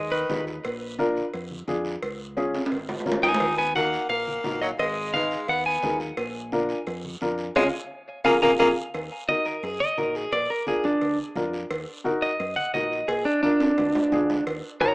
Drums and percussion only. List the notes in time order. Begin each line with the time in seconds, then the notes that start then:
0.30 high conga, low conga, low timbale, short guiro
0.47 short guiro
0.64 cowbell, long guiro
0.99 high conga, short guiro
1.17 short guiro
1.34 cowbell, long guiro
1.51 high conga
1.68 high conga, short guiro
1.85 short guiro
2.03 cowbell, long guiro
2.37 high conga, short guiro
2.54 high timbale, short guiro
2.66 high timbale
2.72 cowbell, long guiro
2.78 high timbale
2.89 high conga, low timbale
3.00 low timbale
3.06 high conga, low conga, short guiro
3.12 low timbale
3.24 low timbale, short guiro
3.34 low timbale
3.40 cowbell, long guiro
3.75 high conga, short guiro
3.93 short guiro
4.09 cowbell, long guiro
4.27 high conga
4.44 high conga, low timbale, short guiro
4.62 short guiro
4.79 cowbell, long guiro
5.14 high conga, short guiro
5.31 short guiro
5.48 cowbell, long guiro
5.83 high conga, low conga, low timbale, short guiro
6.00 short guiro
6.17 cowbell, long guiro
6.52 high conga, short guiro
6.69 short guiro
6.87 cowbell, long guiro
7.04 high conga
7.21 high conga, short guiro
7.38 short guiro
7.55 high conga, high timbale, long guiro
8.25 high conga, high timbale, long guiro
8.42 high conga, high timbale, long guiro
8.59 high conga, high timbale, long guiro
8.94 cowbell, long guiro
9.29 high conga, short guiro
9.45 short guiro
9.63 cowbell, long guiro
9.80 high conga
9.98 high conga, short guiro
10.15 short guiro
10.32 cowbell, long guiro
10.67 high conga, short guiro
10.84 low conga, short guiro
11.01 cowbell, long guiro
11.18 high conga
11.36 high conga, low conga, low timbale, short guiro
11.53 short guiro
11.71 cowbell, long guiro
12.05 high conga, short guiro
12.22 short guiro
12.40 cowbell, long guiro
12.57 high conga
12.74 high conga, low timbale, short guiro
12.92 short guiro
13.09 cowbell, long guiro
13.43 high conga, short guiro
13.60 high timbale, short guiro
13.78 cowbell, low timbale, long guiro
13.95 low timbale
14.12 high conga, low conga, low timbale, short guiro
14.30 low timbale, short guiro
14.47 cowbell, long guiro
14.81 high conga, short guiro